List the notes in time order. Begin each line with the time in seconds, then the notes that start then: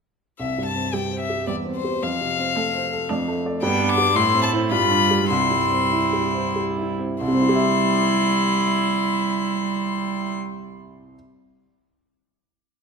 0.39 C2 E5
0.58 G2
0.66 A5
0.76 C4
0.93 G3 C4 G4 G5
1.12 C5
1.20 E5
1.30 G4
1.47 E2 G3 C4 D5
1.65 C4
1.76 C5
1.84 G4 C5
2.03 F2 F5
2.21 C3
2.39 C4
2.56 A3 C4 A4
2.75 C5
2.92 A4
3.10 F2 A3 D4
3.28 A3
3.45 A4 D5
3.62 G2 B3 D4 G5
3.80 B3
3.89 D6
3.98 G4 D5
4.16 A2 A3 E4 C6
4.34 C4
4.43 A5
4.53 E4 C5
4.71 G2 G3 F4 B5
4.90 D4
5.10 F4 G4
5.30 C2 G3 E4 C6
5.51 G2
5.72 C4
5.92 E4
6.13 G4
6.34 C5
6.56 G4
6.78 E4
6.99 C4
7.21 C2 G3 E4 C6
7.28 C3
7.35 C4
7.42 E4
7.49 G4
7.56 E5